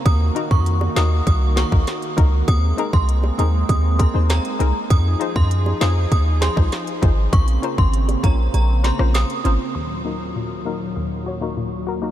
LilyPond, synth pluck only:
\new Staff \with { instrumentName = "Synth pluck" } { \time 4/4 \key ees \dorian \tempo 4 = 99 << { r8 <bes ees' ges' bes'>16 r8. <bes ees' ges' bes'>16 r8. <ges' bes'>16 <bes ees' ges' bes'>16 r8 <bes ees' ges' bes'>16 r16 | r8 <c' ees' aes' bes'>16 r8. <c' ees' aes' bes'>16 r8. <aes' bes'>16 <c' ees' aes' c''>16 r8 <c' ees' aes' bes'>16 r16 | r8 <ees' f' aes' c''>16 r8. <ees' f' aes' c''>16 r8. <aes' c''>16 <ees' f' aes' c''>16 r8 <ees' f' aes' c''>16 r16 | r8 <des' f' bes' c''>16 r8. <des' f' bes' des''>16 r8. <bes' c''>16 <des' f' bes' c''>16 r8 <des' f' bes' c''>16 r16 |
r8 <bes ees' ges' bes'>16 r8. <bes ees' ges' bes'>16 r8. <ges' des''>16 <bes ees' ges' bes'>16 r8 <ges' bes'>16 <bes ees' ges' bes'>16 | } \\ { r1 | r1 | r1 | r1 |
ees,4 bes,4 ees,4 bes,4 | } >> }